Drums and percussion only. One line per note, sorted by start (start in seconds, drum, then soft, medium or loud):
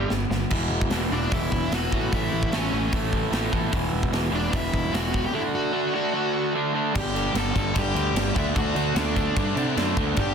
0.10 snare medium
0.31 snare medium
0.50 kick loud
0.50 crash loud
0.81 kick medium
0.90 snare loud
0.90 open hi-hat medium
1.32 kick loud
1.32 open hi-hat medium
1.52 kick medium
1.72 snare loud
1.72 open hi-hat medium
1.92 kick medium
2.13 kick loud
2.13 open hi-hat medium
2.43 kick medium
2.52 snare loud
2.52 open hi-hat medium
2.93 kick loud
2.93 open hi-hat medium
3.13 kick medium
3.33 snare loud
3.33 open hi-hat medium
3.53 kick medium
3.73 kick loud
3.73 open hi-hat medium
4.03 kick medium
4.13 snare loud
4.13 open hi-hat medium
4.53 kick loud
4.53 open hi-hat medium
4.74 kick medium
4.94 snare loud
4.94 open hi-hat medium
5.14 kick medium
6.95 kick loud
6.95 crash loud
6.95 crash medium
7.16 crash medium
7.35 snare loud
7.35 crash medium
7.56 kick medium
7.56 crash medium
7.76 kick loud
7.76 crash medium
7.96 crash medium
8.16 snare loud
8.16 crash medium
8.36 kick loud
8.36 crash medium
8.56 kick loud
8.56 crash medium
8.76 crash medium
8.96 snare loud
8.96 crash medium
9.16 kick medium
9.16 crash medium
9.36 kick loud
9.36 crash medium
9.57 crash medium
9.77 snare loud
9.77 crash medium
9.97 kick medium
9.97 crash medium
10.17 kick loud
10.17 crash medium